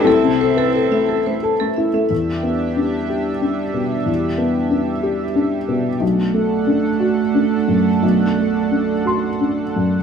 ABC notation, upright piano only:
X:1
M:6/8
L:1/16
Q:3/8=60
K:Em
V:1 name="Upright piano"
A8- A2 z2 | z12 | z12 | z12 |
z6 c'6 |]
V:2 name="Upright piano"
[C,,A,] C, A B A A, A A, A A, E A, | E,,2 B,2 D2 G2 D2 B,,2 | E,,2 B,2 D2 G2 D2 B,,2 | B,,,2 A,2 D2 F2 D2 F,,2 |
B,,,2 A,2 D2 F2 D2 F,,2 |]